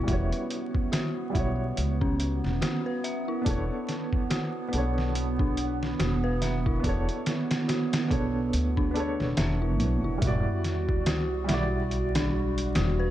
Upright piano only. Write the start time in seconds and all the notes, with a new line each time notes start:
Already playing: C#5
0.03 G3 E4
0.10 F#4 C#5
1.30 G3 E4
1.36 F#4 C#5
3.41 B3 D4
3.47 A4 C#5
4.68 B3 D4
4.74 A4 C#5
6.79 B3 D4
6.86 A4 C#5
8.08 B3 D4 A4
8.13 C#5
8.91 B3 D4
8.97 A4 C#5
10.18 G3 E4
10.24 F#4 D5
11.44 G3 E4
11.50 F#4 D5